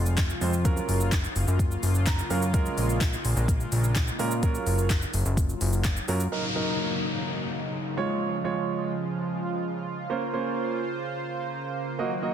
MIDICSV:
0, 0, Header, 1, 6, 480
1, 0, Start_track
1, 0, Tempo, 472441
1, 660, Time_signature, 4, 2, 24, 8
1, 12536, End_track
2, 0, Start_track
2, 0, Title_t, "Grand piano"
2, 0, Program_c, 0, 0
2, 418, Note_on_c, 0, 56, 85
2, 420, Note_on_c, 0, 60, 77
2, 421, Note_on_c, 0, 65, 78
2, 423, Note_on_c, 0, 72, 95
2, 534, Note_off_c, 0, 56, 0
2, 535, Note_off_c, 0, 60, 0
2, 536, Note_off_c, 0, 65, 0
2, 537, Note_off_c, 0, 72, 0
2, 657, Note_on_c, 0, 54, 88
2, 659, Note_on_c, 0, 61, 80
2, 660, Note_on_c, 0, 65, 81
2, 662, Note_on_c, 0, 70, 95
2, 1119, Note_off_c, 0, 54, 0
2, 1120, Note_off_c, 0, 61, 0
2, 1121, Note_off_c, 0, 65, 0
2, 1122, Note_off_c, 0, 70, 0
2, 2101, Note_on_c, 0, 82, 82
2, 2324, Note_off_c, 0, 82, 0
2, 2338, Note_on_c, 0, 54, 86
2, 2340, Note_on_c, 0, 61, 77
2, 2341, Note_on_c, 0, 77, 70
2, 2342, Note_on_c, 0, 65, 76
2, 2344, Note_on_c, 0, 70, 90
2, 2454, Note_off_c, 0, 54, 0
2, 2455, Note_off_c, 0, 61, 0
2, 2456, Note_off_c, 0, 65, 0
2, 2457, Note_off_c, 0, 70, 0
2, 2564, Note_off_c, 0, 77, 0
2, 2578, Note_on_c, 0, 56, 91
2, 2580, Note_on_c, 0, 61, 81
2, 2581, Note_on_c, 0, 65, 78
2, 2583, Note_on_c, 0, 70, 100
2, 3040, Note_off_c, 0, 56, 0
2, 3041, Note_off_c, 0, 61, 0
2, 3041, Note_off_c, 0, 65, 0
2, 3042, Note_off_c, 0, 70, 0
2, 4257, Note_on_c, 0, 56, 85
2, 4259, Note_on_c, 0, 61, 77
2, 4261, Note_on_c, 0, 65, 76
2, 4262, Note_on_c, 0, 70, 98
2, 4373, Note_off_c, 0, 56, 0
2, 4375, Note_off_c, 0, 61, 0
2, 4376, Note_off_c, 0, 65, 0
2, 4376, Note_off_c, 0, 70, 0
2, 4497, Note_on_c, 0, 54, 92
2, 4499, Note_on_c, 0, 61, 82
2, 4500, Note_on_c, 0, 65, 84
2, 4501, Note_on_c, 0, 70, 99
2, 4959, Note_off_c, 0, 54, 0
2, 4960, Note_off_c, 0, 61, 0
2, 4961, Note_off_c, 0, 65, 0
2, 4961, Note_off_c, 0, 70, 0
2, 6176, Note_on_c, 0, 54, 84
2, 6179, Note_on_c, 0, 61, 77
2, 6180, Note_on_c, 0, 65, 79
2, 6182, Note_on_c, 0, 70, 94
2, 6293, Note_off_c, 0, 54, 0
2, 6295, Note_off_c, 0, 61, 0
2, 6295, Note_off_c, 0, 65, 0
2, 6296, Note_off_c, 0, 70, 0
2, 6417, Note_on_c, 0, 54, 85
2, 6419, Note_on_c, 0, 63, 75
2, 6422, Note_on_c, 0, 70, 89
2, 6534, Note_off_c, 0, 54, 0
2, 6535, Note_off_c, 0, 63, 0
2, 6536, Note_off_c, 0, 70, 0
2, 6658, Note_on_c, 0, 54, 78
2, 6660, Note_on_c, 0, 63, 75
2, 6663, Note_on_c, 0, 70, 87
2, 7120, Note_off_c, 0, 54, 0
2, 7121, Note_off_c, 0, 63, 0
2, 7122, Note_off_c, 0, 70, 0
2, 8099, Note_on_c, 0, 56, 87
2, 8101, Note_on_c, 0, 65, 72
2, 8103, Note_on_c, 0, 73, 94
2, 8483, Note_off_c, 0, 56, 0
2, 8484, Note_off_c, 0, 65, 0
2, 8486, Note_off_c, 0, 73, 0
2, 8578, Note_on_c, 0, 56, 82
2, 8580, Note_on_c, 0, 65, 74
2, 8583, Note_on_c, 0, 73, 91
2, 9040, Note_off_c, 0, 56, 0
2, 9041, Note_off_c, 0, 65, 0
2, 9042, Note_off_c, 0, 73, 0
2, 10258, Note_on_c, 0, 58, 84
2, 10261, Note_on_c, 0, 61, 76
2, 10264, Note_on_c, 0, 72, 93
2, 10374, Note_off_c, 0, 58, 0
2, 10375, Note_off_c, 0, 61, 0
2, 10377, Note_off_c, 0, 72, 0
2, 10498, Note_on_c, 0, 58, 84
2, 10500, Note_on_c, 0, 61, 77
2, 10502, Note_on_c, 0, 72, 89
2, 10960, Note_off_c, 0, 58, 0
2, 10961, Note_off_c, 0, 61, 0
2, 10962, Note_off_c, 0, 72, 0
2, 12179, Note_on_c, 0, 58, 83
2, 12181, Note_on_c, 0, 66, 78
2, 12183, Note_on_c, 0, 75, 90
2, 12295, Note_off_c, 0, 58, 0
2, 12296, Note_off_c, 0, 66, 0
2, 12297, Note_off_c, 0, 75, 0
2, 12419, Note_on_c, 0, 58, 82
2, 12421, Note_on_c, 0, 66, 75
2, 12423, Note_on_c, 0, 75, 90
2, 12536, Note_off_c, 0, 58, 0
2, 12536, Note_off_c, 0, 66, 0
2, 12536, Note_off_c, 0, 75, 0
2, 12536, End_track
3, 0, Start_track
3, 0, Title_t, "Analog synth pad"
3, 0, Program_c, 1, 89
3, 0, Note_on_c, 1, 48, 78
3, 0, Note_on_c, 1, 53, 77
3, 0, Note_on_c, 1, 56, 73
3, 0, Note_on_c, 1, 65, 92
3, 642, Note_off_c, 1, 48, 0
3, 642, Note_off_c, 1, 53, 0
3, 642, Note_off_c, 1, 56, 0
3, 659, Note_on_c, 1, 49, 78
3, 660, Note_on_c, 1, 54, 75
3, 660, Note_on_c, 1, 58, 73
3, 2561, Note_off_c, 1, 54, 0
3, 2581, Note_on_c, 1, 56, 73
3, 4481, Note_off_c, 1, 56, 0
3, 4500, Note_on_c, 1, 54, 76
3, 6379, Note_off_c, 1, 49, 0
3, 6379, Note_off_c, 1, 65, 0
3, 6380, Note_off_c, 1, 58, 0
3, 6401, Note_off_c, 1, 54, 0
3, 6420, Note_on_c, 1, 49, 76
3, 6420, Note_on_c, 1, 63, 82
3, 6421, Note_on_c, 1, 54, 73
3, 6421, Note_on_c, 1, 58, 68
3, 8083, Note_off_c, 1, 54, 0
3, 8083, Note_off_c, 1, 58, 0
3, 8083, Note_off_c, 1, 63, 0
3, 8101, Note_on_c, 1, 53, 72
3, 8101, Note_on_c, 1, 56, 75
3, 8102, Note_on_c, 1, 65, 88
3, 10239, Note_off_c, 1, 53, 0
3, 10239, Note_off_c, 1, 56, 0
3, 10261, Note_on_c, 1, 58, 71
3, 10261, Note_on_c, 1, 72, 68
3, 12139, Note_off_c, 1, 49, 0
3, 12140, Note_off_c, 1, 65, 0
3, 12162, Note_off_c, 1, 72, 0
3, 12180, Note_on_c, 1, 51, 78
3, 12181, Note_on_c, 1, 54, 73
3, 12181, Note_on_c, 1, 66, 88
3, 12536, Note_off_c, 1, 51, 0
3, 12536, Note_off_c, 1, 54, 0
3, 12536, Note_off_c, 1, 58, 0
3, 12536, Note_off_c, 1, 66, 0
3, 12536, End_track
4, 0, Start_track
4, 0, Title_t, "Analog synth bass"
4, 0, Program_c, 2, 38
4, 0, Note_on_c, 2, 29, 95
4, 336, Note_off_c, 2, 29, 0
4, 419, Note_on_c, 2, 41, 96
4, 816, Note_off_c, 2, 41, 0
4, 899, Note_on_c, 2, 30, 90
4, 1296, Note_off_c, 2, 30, 0
4, 1380, Note_on_c, 2, 30, 91
4, 1479, Note_off_c, 2, 30, 0
4, 1499, Note_on_c, 2, 30, 98
4, 1797, Note_off_c, 2, 30, 0
4, 1859, Note_on_c, 2, 30, 95
4, 2256, Note_off_c, 2, 30, 0
4, 2340, Note_on_c, 2, 42, 92
4, 2736, Note_off_c, 2, 42, 0
4, 2820, Note_on_c, 2, 34, 89
4, 3217, Note_off_c, 2, 34, 0
4, 3299, Note_on_c, 2, 34, 89
4, 3399, Note_off_c, 2, 34, 0
4, 3419, Note_on_c, 2, 34, 93
4, 3717, Note_off_c, 2, 34, 0
4, 3780, Note_on_c, 2, 34, 92
4, 4177, Note_off_c, 2, 34, 0
4, 4260, Note_on_c, 2, 46, 97
4, 4657, Note_off_c, 2, 46, 0
4, 4739, Note_on_c, 2, 30, 91
4, 5136, Note_off_c, 2, 30, 0
4, 5220, Note_on_c, 2, 30, 90
4, 5319, Note_off_c, 2, 30, 0
4, 5340, Note_on_c, 2, 30, 95
4, 5637, Note_off_c, 2, 30, 0
4, 5700, Note_on_c, 2, 30, 95
4, 6097, Note_off_c, 2, 30, 0
4, 6180, Note_on_c, 2, 42, 93
4, 6378, Note_off_c, 2, 42, 0
4, 12536, End_track
5, 0, Start_track
5, 0, Title_t, "Downlifter"
5, 0, Program_c, 3, 103
5, 6420, Note_on_c, 3, 60, 77
5, 10260, Note_off_c, 3, 60, 0
5, 12536, End_track
6, 0, Start_track
6, 0, Title_t, "Drums"
6, 60, Note_on_c, 9, 82, 73
6, 162, Note_off_c, 9, 82, 0
6, 179, Note_on_c, 9, 42, 73
6, 179, Note_on_c, 9, 82, 68
6, 181, Note_on_c, 9, 39, 85
6, 182, Note_off_c, 9, 39, 0
6, 182, Note_on_c, 9, 39, 123
6, 183, Note_on_c, 9, 36, 112
6, 188, Note_on_c, 9, 38, 93
6, 280, Note_off_c, 9, 42, 0
6, 280, Note_off_c, 9, 82, 0
6, 284, Note_off_c, 9, 39, 0
6, 285, Note_off_c, 9, 36, 0
6, 290, Note_off_c, 9, 38, 0
6, 303, Note_on_c, 9, 82, 63
6, 404, Note_off_c, 9, 82, 0
6, 421, Note_on_c, 9, 46, 72
6, 421, Note_on_c, 9, 82, 54
6, 522, Note_off_c, 9, 46, 0
6, 522, Note_off_c, 9, 82, 0
6, 541, Note_on_c, 9, 82, 81
6, 642, Note_off_c, 9, 82, 0
6, 661, Note_on_c, 9, 36, 115
6, 661, Note_on_c, 9, 42, 73
6, 661, Note_on_c, 9, 82, 70
6, 762, Note_off_c, 9, 36, 0
6, 762, Note_off_c, 9, 42, 0
6, 762, Note_off_c, 9, 82, 0
6, 781, Note_on_c, 9, 82, 56
6, 883, Note_off_c, 9, 82, 0
6, 901, Note_on_c, 9, 46, 66
6, 901, Note_on_c, 9, 82, 47
6, 1003, Note_off_c, 9, 46, 0
6, 1003, Note_off_c, 9, 82, 0
6, 1021, Note_on_c, 9, 82, 77
6, 1123, Note_off_c, 9, 82, 0
6, 1140, Note_on_c, 9, 36, 112
6, 1140, Note_on_c, 9, 39, 93
6, 1140, Note_on_c, 9, 42, 77
6, 1140, Note_on_c, 9, 82, 77
6, 1143, Note_off_c, 9, 39, 0
6, 1143, Note_on_c, 9, 39, 119
6, 1149, Note_on_c, 9, 38, 92
6, 1241, Note_off_c, 9, 36, 0
6, 1241, Note_off_c, 9, 42, 0
6, 1241, Note_off_c, 9, 82, 0
6, 1244, Note_off_c, 9, 39, 0
6, 1251, Note_off_c, 9, 38, 0
6, 1261, Note_on_c, 9, 82, 52
6, 1362, Note_off_c, 9, 82, 0
6, 1379, Note_on_c, 9, 46, 81
6, 1379, Note_on_c, 9, 82, 59
6, 1481, Note_off_c, 9, 46, 0
6, 1481, Note_off_c, 9, 82, 0
6, 1501, Note_on_c, 9, 82, 83
6, 1603, Note_off_c, 9, 82, 0
6, 1619, Note_on_c, 9, 36, 110
6, 1623, Note_on_c, 9, 42, 85
6, 1623, Note_on_c, 9, 82, 83
6, 1720, Note_off_c, 9, 36, 0
6, 1724, Note_off_c, 9, 42, 0
6, 1724, Note_off_c, 9, 82, 0
6, 1741, Note_on_c, 9, 82, 45
6, 1842, Note_off_c, 9, 82, 0
6, 1860, Note_on_c, 9, 46, 96
6, 1860, Note_on_c, 9, 82, 67
6, 1961, Note_off_c, 9, 46, 0
6, 1961, Note_off_c, 9, 82, 0
6, 1979, Note_on_c, 9, 82, 70
6, 2081, Note_off_c, 9, 82, 0
6, 2098, Note_on_c, 9, 42, 72
6, 2098, Note_on_c, 9, 82, 71
6, 2100, Note_on_c, 9, 39, 88
6, 2101, Note_off_c, 9, 39, 0
6, 2101, Note_on_c, 9, 39, 120
6, 2103, Note_on_c, 9, 36, 107
6, 2108, Note_on_c, 9, 38, 101
6, 2199, Note_off_c, 9, 42, 0
6, 2199, Note_off_c, 9, 82, 0
6, 2203, Note_off_c, 9, 39, 0
6, 2205, Note_off_c, 9, 36, 0
6, 2209, Note_off_c, 9, 38, 0
6, 2222, Note_on_c, 9, 82, 60
6, 2324, Note_off_c, 9, 82, 0
6, 2341, Note_on_c, 9, 46, 74
6, 2341, Note_on_c, 9, 82, 53
6, 2442, Note_off_c, 9, 46, 0
6, 2442, Note_off_c, 9, 82, 0
6, 2460, Note_on_c, 9, 82, 82
6, 2562, Note_off_c, 9, 82, 0
6, 2580, Note_on_c, 9, 36, 119
6, 2580, Note_on_c, 9, 42, 71
6, 2580, Note_on_c, 9, 82, 68
6, 2681, Note_off_c, 9, 42, 0
6, 2681, Note_off_c, 9, 82, 0
6, 2682, Note_off_c, 9, 36, 0
6, 2700, Note_on_c, 9, 82, 57
6, 2802, Note_off_c, 9, 82, 0
6, 2820, Note_on_c, 9, 46, 66
6, 2820, Note_on_c, 9, 82, 50
6, 2922, Note_off_c, 9, 46, 0
6, 2922, Note_off_c, 9, 82, 0
6, 2941, Note_on_c, 9, 82, 74
6, 3042, Note_off_c, 9, 82, 0
6, 3059, Note_on_c, 9, 42, 80
6, 3059, Note_on_c, 9, 82, 80
6, 3060, Note_on_c, 9, 36, 117
6, 3061, Note_on_c, 9, 39, 90
6, 3063, Note_off_c, 9, 39, 0
6, 3063, Note_on_c, 9, 39, 121
6, 3069, Note_on_c, 9, 38, 99
6, 3161, Note_off_c, 9, 36, 0
6, 3161, Note_off_c, 9, 42, 0
6, 3161, Note_off_c, 9, 82, 0
6, 3164, Note_off_c, 9, 39, 0
6, 3171, Note_off_c, 9, 38, 0
6, 3181, Note_on_c, 9, 82, 54
6, 3283, Note_off_c, 9, 82, 0
6, 3298, Note_on_c, 9, 46, 83
6, 3298, Note_on_c, 9, 82, 59
6, 3400, Note_off_c, 9, 46, 0
6, 3400, Note_off_c, 9, 82, 0
6, 3421, Note_on_c, 9, 82, 81
6, 3523, Note_off_c, 9, 82, 0
6, 3539, Note_on_c, 9, 36, 119
6, 3543, Note_on_c, 9, 42, 83
6, 3543, Note_on_c, 9, 82, 88
6, 3640, Note_off_c, 9, 36, 0
6, 3644, Note_off_c, 9, 42, 0
6, 3644, Note_off_c, 9, 82, 0
6, 3660, Note_on_c, 9, 82, 46
6, 3762, Note_off_c, 9, 82, 0
6, 3780, Note_on_c, 9, 46, 93
6, 3780, Note_on_c, 9, 82, 68
6, 3882, Note_off_c, 9, 46, 0
6, 3882, Note_off_c, 9, 82, 0
6, 3899, Note_on_c, 9, 82, 72
6, 4001, Note_off_c, 9, 82, 0
6, 4018, Note_on_c, 9, 42, 71
6, 4018, Note_on_c, 9, 82, 72
6, 4020, Note_on_c, 9, 39, 87
6, 4022, Note_off_c, 9, 39, 0
6, 4022, Note_on_c, 9, 39, 126
6, 4023, Note_on_c, 9, 36, 110
6, 4028, Note_on_c, 9, 38, 95
6, 4120, Note_off_c, 9, 42, 0
6, 4120, Note_off_c, 9, 82, 0
6, 4123, Note_off_c, 9, 39, 0
6, 4125, Note_off_c, 9, 36, 0
6, 4130, Note_off_c, 9, 38, 0
6, 4142, Note_on_c, 9, 82, 60
6, 4243, Note_off_c, 9, 82, 0
6, 4261, Note_on_c, 9, 46, 72
6, 4261, Note_on_c, 9, 82, 52
6, 4363, Note_off_c, 9, 46, 0
6, 4363, Note_off_c, 9, 82, 0
6, 4380, Note_on_c, 9, 82, 84
6, 4481, Note_off_c, 9, 82, 0
6, 4500, Note_on_c, 9, 36, 117
6, 4500, Note_on_c, 9, 42, 71
6, 4500, Note_on_c, 9, 82, 71
6, 4602, Note_off_c, 9, 36, 0
6, 4602, Note_off_c, 9, 42, 0
6, 4602, Note_off_c, 9, 82, 0
6, 4621, Note_on_c, 9, 82, 58
6, 4722, Note_off_c, 9, 82, 0
6, 4740, Note_on_c, 9, 46, 66
6, 4740, Note_on_c, 9, 82, 49
6, 4841, Note_off_c, 9, 46, 0
6, 4841, Note_off_c, 9, 82, 0
6, 4860, Note_on_c, 9, 82, 71
6, 4961, Note_off_c, 9, 82, 0
6, 4979, Note_on_c, 9, 36, 112
6, 4979, Note_on_c, 9, 42, 79
6, 4979, Note_on_c, 9, 82, 80
6, 4980, Note_on_c, 9, 39, 94
6, 4982, Note_off_c, 9, 39, 0
6, 4982, Note_on_c, 9, 39, 114
6, 4989, Note_on_c, 9, 38, 94
6, 5081, Note_off_c, 9, 36, 0
6, 5081, Note_off_c, 9, 42, 0
6, 5081, Note_off_c, 9, 82, 0
6, 5084, Note_off_c, 9, 39, 0
6, 5090, Note_off_c, 9, 38, 0
6, 5100, Note_on_c, 9, 82, 54
6, 5201, Note_off_c, 9, 82, 0
6, 5218, Note_on_c, 9, 46, 85
6, 5218, Note_on_c, 9, 82, 61
6, 5319, Note_off_c, 9, 46, 0
6, 5319, Note_off_c, 9, 82, 0
6, 5340, Note_on_c, 9, 82, 80
6, 5441, Note_off_c, 9, 82, 0
6, 5458, Note_on_c, 9, 36, 115
6, 5462, Note_on_c, 9, 42, 84
6, 5462, Note_on_c, 9, 82, 86
6, 5559, Note_off_c, 9, 36, 0
6, 5563, Note_off_c, 9, 42, 0
6, 5563, Note_off_c, 9, 82, 0
6, 5580, Note_on_c, 9, 82, 45
6, 5681, Note_off_c, 9, 82, 0
6, 5700, Note_on_c, 9, 46, 93
6, 5700, Note_on_c, 9, 82, 70
6, 5801, Note_off_c, 9, 46, 0
6, 5801, Note_off_c, 9, 82, 0
6, 5818, Note_on_c, 9, 82, 71
6, 5920, Note_off_c, 9, 82, 0
6, 5937, Note_on_c, 9, 42, 69
6, 5937, Note_on_c, 9, 82, 73
6, 5940, Note_on_c, 9, 39, 88
6, 5941, Note_off_c, 9, 39, 0
6, 5941, Note_on_c, 9, 39, 120
6, 5943, Note_on_c, 9, 36, 113
6, 5947, Note_on_c, 9, 38, 99
6, 6039, Note_off_c, 9, 42, 0
6, 6039, Note_off_c, 9, 82, 0
6, 6042, Note_off_c, 9, 39, 0
6, 6044, Note_off_c, 9, 36, 0
6, 6049, Note_off_c, 9, 38, 0
6, 6061, Note_on_c, 9, 82, 59
6, 6162, Note_off_c, 9, 82, 0
6, 6180, Note_on_c, 9, 46, 72
6, 6180, Note_on_c, 9, 82, 54
6, 6281, Note_off_c, 9, 46, 0
6, 6281, Note_off_c, 9, 82, 0
6, 6300, Note_on_c, 9, 82, 85
6, 6401, Note_off_c, 9, 82, 0
6, 12536, End_track
0, 0, End_of_file